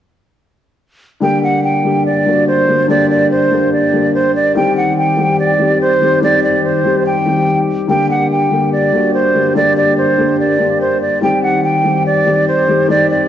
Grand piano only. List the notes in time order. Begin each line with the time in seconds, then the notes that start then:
1.21 D3 G3 A#3 G4
1.84 D3 G3 A#3 G4
2.25 D3 G3 A#3 F#4
2.67 D3 G3 A#3 G4
2.88 D3 G3 A#3 G4
3.50 D3 G3 A#3 G4
3.92 D3 G3 A#3 G4
4.55 D#3 G3 C4 G4
5.17 D#3 G3 C4 G4
5.59 D#3 G3 C4 G4
6.01 D#3 G3 C4 G4
6.21 D#3 G3 C4 G4
6.84 D#3 G3 C4 G4
7.25 D#3 G3 C4 G4
7.87 D3 G3 A#3 G4
8.50 D3 G3 A#3 G4
8.92 D3 G3 A#3 F#4
9.34 D3 G3 A#3 G4
9.54 D3 G3 A#3 G4
10.17 D3 G3 A#3 G4
10.58 D3 G3 A#3 G4
11.22 D#3 G3 C4 G4
11.84 D#3 G3 C4 G4
12.25 D#3 G3 C4 G4
12.67 D#3 G3 C4 G4
12.88 D#3 G3 C4 G4